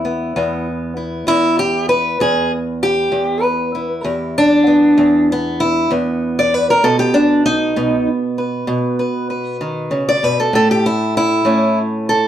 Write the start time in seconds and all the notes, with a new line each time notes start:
Already playing: E2 E4
0.05 B3
0.36 E2 B3
0.97 E4
1.27 E2 E4
1.59 G4
1.89 B4
2.20 E2 G#4
2.83 G4
3.12 E2
3.42 B4
3.75 E4
4.04 E2 G4
4.38 D4
4.67 B3
4.98 E2
5.32 B3
5.60 E4
5.91 E2 B3
6.39 D5
6.54 B4
6.70 A#4
6.83 B2 B3 A4
6.99 G4
7.14 D4
7.46 D#4
7.76 B2 B3
8.38 B4
8.67 B2
8.99 B4
9.30 B4
9.61 D#3
9.91 C#3
10.09 D5
10.23 B2 B4
10.40 A4
10.53 A2 A4
10.71 G4
10.86 E4
11.17 E4
11.45 A2 C#4
12.09 A4